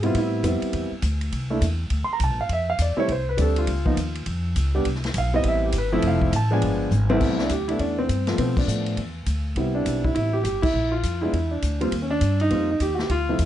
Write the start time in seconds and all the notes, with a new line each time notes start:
Already playing: G#2
0.03 G3 B3 C4 E4 F4, ride
0.14 A2, kick, ride
0.18 E4
0.43 F2 G3 B3 C4 E4, kick, hi-hat pedal, ride
0.62 muted upright bass stroke, ride
0.73 E2, kick, ride
0.91 muted upright bass stroke
1.02 D2, kick, hi-hat pedal, ride
1.21 ride
1.32 C2, kick, ride
1.50 A3 A#3 D4 E4
1.61 E2, kick, hi-hat pedal, ride
1.90 D2, kick, ride
2.04 C6, muted upright bass stroke
2.13 A#5
2.20 C2, kick, hi-hat pedal, ride
2.24 A5
2.30 A#1
2.39 G1 F5
2.49 F2, kick, ride
2.53 E5
2.70 F5
2.79 E2 D5, kick, hi-hat pedal, ride
2.97 G3 A3 C4 E4 C#5, muted upright bass stroke
3.08 C2, kick, ride
3.12 C5
3.29 B4
3.37 D2 G3 A3 C4 D4, kick, hi-hat pedal, ride
3.41 A4
3.56 F4, ride
3.67 C#2, kick, ride
3.85 F3 A#3 B3 D#4, kick
3.97 D#2, kick, hi-hat pedal, ride
4.15 ride
4.26 F2, kick, ride
4.56 C#2, kick, hi-hat pedal, ride
4.75 G3 B3 D4 G4
4.85 C2, kick, ride
4.95 snare
5.04 snare, ride
5.14 B1, kick, hi-hat pedal, ride
5.18 F5
5.34 G3 B3 C4 E4 D#5
5.43 A1, kick, ride
5.48 E5
5.66 G4
5.72 G1, kick, hi-hat pedal, ride
5.78 B4
5.92 F3 A3 C4 E4 E5
6.02 F1, kick, ride
6.08 F5
6.22 kick
6.32 A1, kick, hi-hat pedal, ride
6.36 A5
6.51 F3 G#3 B3 D4 G#5
6.62 G1, kick, ride
6.91 G#1, hi-hat pedal, high tom
7.09 C2 E3 A3 B3 C4 E4, high tom
7.20 C2, kick, crash
7.39 D4, snare
7.49 D2 G4, kick, hi-hat pedal, ride
7.68 E3 A3 B3 D4 E4, ride
7.78 E2 C#4 D4, kick, ride
7.99 C4
8.09 G2, kick, hi-hat pedal, ride
8.27 F3 A3 B3 F4, snare, ride
8.38 B2 C4, kick, ride
8.57 D4, kick, crash
8.67 A2 F3 A3 B3 D4, hi-hat pedal
8.86 ride
8.97 E2, kick, ride
9.26 D2, kick, hi-hat pedal, ride
9.56 C2 G3 B3 C4 E4, kick, ride
9.75 D4
9.85 B1, kick, hi-hat pedal, ride
10.04 E4, kick
10.15 A1 E4, kick, ride
10.33 G4
10.44 G1 G4, kick, hi-hat pedal, ride
10.62 E4, kick, crash
10.74 A#1
10.92 F4
11.03 F2, kick, hi-hat pedal, ride
11.21 G#3 B3 D4 E4 F4
11.33 E2, kick, ride
11.51 D4
11.62 D2, kick, hi-hat pedal, ride
11.81 G3 A#3 C4 F4, ride
11.91 D#2, kick, ride
12.02 C#4
12.11 D4
12.21 G2, kick, hi-hat pedal, ride
12.40 D#4, ride
12.50 F2 G3 A#3 C4 F4, kick, ride
12.71 D#4
12.80 D#2 G4, kick, hi-hat pedal, ride
12.95 F#4
12.99 G4, snare
13.09 D2 F4, kick, ride
13.29 F3 A3 C4 E4
13.39 E2, kick, hi-hat pedal, ride